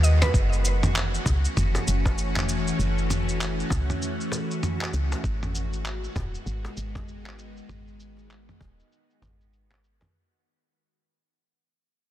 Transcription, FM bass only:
0, 0, Header, 1, 2, 480
1, 0, Start_track
1, 0, Tempo, 612245
1, 266, Time_signature, 4, 2, 24, 8
1, 9491, End_track
2, 0, Start_track
2, 0, Title_t, "FM bass"
2, 0, Program_c, 0, 39
2, 0, Note_on_c, 0, 39, 110
2, 205, Note_off_c, 0, 39, 0
2, 267, Note_on_c, 0, 30, 101
2, 926, Note_off_c, 0, 30, 0
2, 987, Note_on_c, 0, 37, 91
2, 1150, Note_off_c, 0, 37, 0
2, 1230, Note_on_c, 0, 30, 103
2, 1392, Note_off_c, 0, 30, 0
2, 1473, Note_on_c, 0, 30, 86
2, 2128, Note_off_c, 0, 30, 0
2, 2189, Note_on_c, 0, 30, 99
2, 2847, Note_off_c, 0, 30, 0
2, 2909, Note_on_c, 0, 37, 101
2, 3071, Note_off_c, 0, 37, 0
2, 3870, Note_on_c, 0, 37, 83
2, 4031, Note_off_c, 0, 37, 0
2, 4106, Note_on_c, 0, 32, 98
2, 4765, Note_off_c, 0, 32, 0
2, 4828, Note_on_c, 0, 27, 94
2, 4990, Note_off_c, 0, 27, 0
2, 5066, Note_on_c, 0, 32, 102
2, 5230, Note_off_c, 0, 32, 0
2, 5309, Note_on_c, 0, 32, 82
2, 5966, Note_off_c, 0, 32, 0
2, 6030, Note_on_c, 0, 32, 97
2, 6687, Note_off_c, 0, 32, 0
2, 6749, Note_on_c, 0, 27, 93
2, 6911, Note_off_c, 0, 27, 0
2, 7228, Note_on_c, 0, 32, 88
2, 7886, Note_off_c, 0, 32, 0
2, 9491, End_track
0, 0, End_of_file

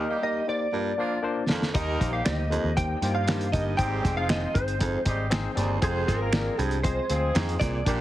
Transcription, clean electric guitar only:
0, 0, Header, 1, 2, 480
1, 0, Start_track
1, 0, Key_signature, -3, "major"
1, 0, Tempo, 509771
1, 1648, Time_signature, 4, 2, 24, 8
1, 7540, End_track
2, 0, Start_track
2, 0, Title_t, "Clean electric guitar"
2, 0, Program_c, 0, 27
2, 0, Note_on_c, 0, 75, 107
2, 208, Note_off_c, 0, 75, 0
2, 220, Note_on_c, 0, 75, 95
2, 457, Note_off_c, 0, 75, 0
2, 461, Note_on_c, 0, 74, 88
2, 1377, Note_off_c, 0, 74, 0
2, 1651, Note_on_c, 0, 75, 97
2, 1984, Note_off_c, 0, 75, 0
2, 2004, Note_on_c, 0, 77, 89
2, 2116, Note_off_c, 0, 77, 0
2, 2120, Note_on_c, 0, 75, 89
2, 2602, Note_off_c, 0, 75, 0
2, 2606, Note_on_c, 0, 79, 100
2, 2959, Note_off_c, 0, 79, 0
2, 2963, Note_on_c, 0, 77, 104
2, 3314, Note_off_c, 0, 77, 0
2, 3318, Note_on_c, 0, 75, 86
2, 3549, Note_off_c, 0, 75, 0
2, 3552, Note_on_c, 0, 79, 101
2, 3923, Note_off_c, 0, 79, 0
2, 3926, Note_on_c, 0, 77, 88
2, 4044, Note_off_c, 0, 77, 0
2, 4047, Note_on_c, 0, 75, 88
2, 4278, Note_on_c, 0, 72, 77
2, 4295, Note_off_c, 0, 75, 0
2, 4729, Note_off_c, 0, 72, 0
2, 5491, Note_on_c, 0, 68, 82
2, 5721, Note_off_c, 0, 68, 0
2, 5725, Note_on_c, 0, 70, 92
2, 6224, Note_off_c, 0, 70, 0
2, 6224, Note_on_c, 0, 68, 92
2, 6407, Note_off_c, 0, 68, 0
2, 6435, Note_on_c, 0, 72, 89
2, 7148, Note_off_c, 0, 72, 0
2, 7152, Note_on_c, 0, 74, 92
2, 7540, Note_off_c, 0, 74, 0
2, 7540, End_track
0, 0, End_of_file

